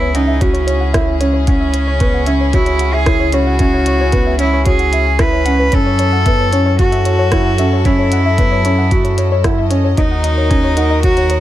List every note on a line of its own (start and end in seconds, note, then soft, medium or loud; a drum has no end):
0.00 5.70 C#2 medium
0.00 5.68 C#3 medium
0.00 9.93 C#4 medium
0.00 0.16 E4 loud
0.00 7.80 E4 medium
0.00 5.68 G#4 medium
0.00 0.06 C#5 loud
0.15 0.34 C#4 medium
0.15 0.43 D#4 medium
0.15 0.23 F#5 medium
0.15 closed hi-hat medium
0.28 0.33 E5 loud
0.41 1.21 C#4 medium
0.41 0.79 F#4 loud
0.41 0.52 C#5 medium
0.41 kick loud
0.41 closed hi-hat soft
0.53 0.62 C#5 loud
0.53 closed hi-hat soft
0.67 0.72 C#5 loud
0.67 closed hi-hat medium
0.81 0.89 F#5 medium
0.93 1.13 E4 medium
0.93 0.99 E5 medium
0.93 kick loud
0.93 cross-stick medium
0.93 closed hi-hat soft
1.07 1.19 C#5 medium
1.20 1.39 C#4 medium
1.20 1.29 C#5 loud
1.20 closed hi-hat medium
1.33 1.39 C#5 loud
1.47 1.85 C#4 medium
1.47 2.56 C#4 loud
1.47 1.56 F#5 medium
1.47 kick loud
1.47 closed hi-hat soft
1.60 1.66 E5 loud
1.74 1.86 C#5 medium
1.74 closed hi-hat medium
1.88 1.96 C#5 loud
2.00 2.19 B3 medium
2.00 2.06 C#5 loud
2.00 kick loud
2.00 closed hi-hat soft
2.14 2.22 F#5 medium
2.27 2.46 C#4 medium
2.27 2.32 E5 loud
2.27 closed hi-hat medium
2.40 2.53 C#5 medium
2.53 2.95 E4 loud
2.53 2.91 F#4 loud
2.53 2.62 C#5 loud
2.53 kick loud
2.53 closed hi-hat soft
2.66 2.72 C#5 loud
2.66 closed hi-hat soft
2.79 2.89 F#5 medium
2.79 closed hi-hat medium
2.94 3.35 G#4 loud
2.94 2.99 E5 loud
3.06 3.25 E4 medium
3.06 3.18 C#5 medium
3.06 kick loud
3.06 cross-stick medium
3.06 closed hi-hat soft
3.20 3.28 C#5 loud
3.33 3.52 C#4 medium
3.33 4.39 F#4 loud
3.33 3.39 C#5 loud
3.33 closed hi-hat medium
3.47 3.55 F#5 medium
3.59 3.97 C#4 loud
3.59 3.65 E5 loud
3.59 kick loud
3.59 closed hi-hat soft
3.74 3.86 C#5 medium
3.86 3.95 C#5 loud
3.86 closed hi-hat medium
4.01 4.05 C#5 loud
4.12 4.31 B3 medium
4.12 4.22 F#5 medium
4.12 kick loud
4.12 closed hi-hat soft
4.26 4.31 E5 loud
4.39 4.58 C#4 medium
4.39 4.65 E4 medium
4.39 4.52 C#5 medium
4.39 closed hi-hat medium
4.53 4.61 C#5 loud
4.66 5.03 F#4 medium
4.66 5.23 G#4 loud
4.66 4.71 C#5 loud
4.66 kick loud
4.66 closed hi-hat soft
4.79 4.88 F#5 medium
4.79 closed hi-hat soft
4.93 5.01 E5 medium
4.93 closed hi-hat medium
5.06 5.14 G#5 medium
5.19 5.38 E4 medium
5.19 5.76 B4 loud
5.19 5.27 E5 medium
5.19 kick loud
5.19 cross-stick medium
5.19 closed hi-hat soft
5.33 5.41 C#5 medium
5.45 5.65 C#4 medium
5.45 5.54 F#5 loud
5.45 closed hi-hat medium
5.59 5.64 B4 medium
5.72 9.95 F#2 medium
5.72 9.93 F#3 medium
5.72 6.10 C#4 medium
5.72 9.93 A4 medium
5.72 6.79 A4 loud
5.72 5.85 C#5 medium
5.72 kick loud
5.72 closed hi-hat soft
5.86 5.94 C#5 loud
5.99 6.04 C#5 loud
5.99 closed hi-hat medium
6.13 6.21 F#5 medium
6.26 6.45 B3 medium
6.26 6.31 E5 loud
6.26 kick loud
6.26 closed hi-hat soft
6.39 6.51 C#5 medium
6.53 6.71 C#4 medium
6.53 6.61 C#5 loud
6.53 closed hi-hat medium
6.66 6.71 C#5 loud
6.79 7.16 F#4 medium
6.79 7.87 F#4 loud
6.79 6.87 F#5 medium
6.79 kick loud
6.79 closed hi-hat soft
6.92 6.97 E5 loud
6.92 closed hi-hat soft
7.05 7.18 C#5 medium
7.05 closed hi-hat medium
7.19 7.27 C#5 loud
7.32 7.51 E4 medium
7.32 7.37 C#5 medium
7.32 kick loud
7.32 cross-stick medium
7.32 closed hi-hat soft
7.46 7.54 F#5 medium
7.58 7.77 C#4 medium
7.58 7.64 E5 loud
7.58 closed hi-hat medium
7.73 7.84 C#5 medium
7.85 8.23 C#4 loud
7.85 9.44 E4 loud
7.85 7.93 C#5 loud
7.85 11.40 D#5 medium
7.85 kick loud
7.85 closed hi-hat soft
7.99 8.03 C#5 loud
8.12 8.20 F#5 medium
8.12 closed hi-hat medium
8.26 8.30 E5 loud
8.38 8.57 B3 medium
8.38 8.51 C#5 medium
8.38 kick loud
8.38 closed hi-hat soft
8.52 8.60 C#5 loud
8.65 8.83 C#4 medium
8.65 8.70 C#5 loud
8.65 closed hi-hat medium
8.78 8.86 F#5 medium
8.91 9.29 F#4 loud
8.91 8.96 E5 loud
8.91 kick medium
8.91 closed hi-hat soft
9.04 9.17 C#5 medium
9.04 closed hi-hat soft
9.18 9.26 C#5 loud
9.18 closed hi-hat medium
9.32 9.36 C#5 loud
9.44 9.63 E4 medium
9.44 9.53 F#5 medium
9.44 kick loud
9.44 cross-stick medium
9.44 closed hi-hat soft
9.58 9.63 E5 loud
9.70 9.89 C#4 medium
9.70 9.83 C#5 medium
9.70 closed hi-hat medium
9.84 9.92 C#5 loud
9.97 11.40 D#2 medium
9.97 11.40 D#3 medium
9.97 10.35 D#4 medium
9.97 11.00 D#4 loud
9.97 11.40 F#4 medium
9.97 11.40 A#4 medium
9.97 10.02 C#5 loud
9.97 kick loud
9.97 closed hi-hat soft
10.11 10.19 F#5 medium
10.24 10.29 D#5 loud
10.24 closed hi-hat medium
10.38 10.49 C#5 medium
10.50 10.69 C#4 medium
10.50 10.59 C#5 loud
10.50 kick loud
10.50 closed hi-hat soft
10.64 10.69 C#5 loud
10.77 10.96 D#4 medium
10.77 10.85 F#5 medium
10.77 closed hi-hat medium
10.90 10.95 D#5 loud
11.03 11.40 F#4 loud
11.03 11.16 C#5 medium
11.03 kick medium
11.03 closed hi-hat soft
11.17 11.25 C#5 loud
11.17 closed hi-hat soft
11.30 11.35 C#5 loud
11.30 closed hi-hat medium